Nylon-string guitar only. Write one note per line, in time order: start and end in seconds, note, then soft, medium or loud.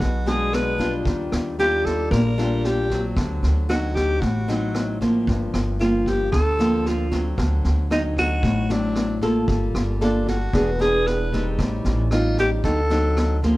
0.00 1.03 B2 medium
0.26 0.75 G#3 medium
0.26 0.75 D4 medium
0.26 0.76 F#4 medium
0.78 1.58 G3 medium
0.78 1.58 D4 medium
0.78 1.59 F4 medium
1.06 2.09 D#3 medium
1.59 2.34 G3 medium
1.59 2.34 D4 medium
1.59 2.34 F4 medium
2.12 3.14 A#2 soft
2.38 2.86 G3 medium
2.38 2.86 D4 medium
2.38 2.87 F4 medium
2.91 3.66 F#3 medium
2.91 3.66 C4 medium
3.17 4.20 D3 medium
3.69 4.22 F#3 soft
3.69 4.22 C4 medium
3.69 4.22 D#4 medium
4.22 5.25 A2 soft
4.48 4.97 F#3 medium
4.48 4.97 C4 medium
4.48 4.97 D#4 medium
5.01 5.76 F3 soft
5.01 5.76 A#3 medium
5.01 5.76 C4 medium
5.28 6.30 G2 soft
5.81 6.33 F3 medium
5.81 6.33 A#3 medium
5.81 6.33 C4 medium
6.32 7.35 D3 medium
6.59 7.07 F3 medium
6.59 7.08 A#3 medium
6.59 7.08 C4 medium
7.12 7.86 F#3 medium
7.12 7.86 C4 medium
7.37 8.40 D3 medium
7.90 8.65 F#3 soft
7.90 8.65 C4 medium
7.90 8.66 D#4 medium
8.43 9.46 A2 medium
8.70 9.18 F#3 medium
8.70 9.18 C4 medium
9.22 9.97 A#3 medium
9.22 9.97 F4 medium
9.22 9.97 A4 medium
9.49 10.51 G3 medium
10.01 10.36 A#3 soft
10.01 10.37 F4 medium
10.01 10.36 A4 medium
10.54 11.33 E3 soft
10.54 10.69 B3 soft
10.54 10.69 D4 medium
10.54 10.69 G#4 medium
10.79 11.28 B3 medium
10.79 11.28 D4 medium
10.79 11.28 G#4 medium
11.33 12.07 G3 medium
11.33 12.08 C4 medium
11.33 12.08 D#4 medium
11.59 12.61 A2 soft
12.12 12.62 G3 soft
12.12 12.62 C4 medium
12.12 12.62 D#4 medium
12.64 13.57 D3 soft
12.64 12.79 F#3 medium
12.64 12.80 C4 medium
12.64 12.80 D#4 medium
12.90 13.38 F#3 medium
12.90 13.38 C4 medium
12.90 13.39 D#4 medium
13.43 13.57 F3 medium
13.43 13.57 A#3 medium
13.43 13.57 C4 medium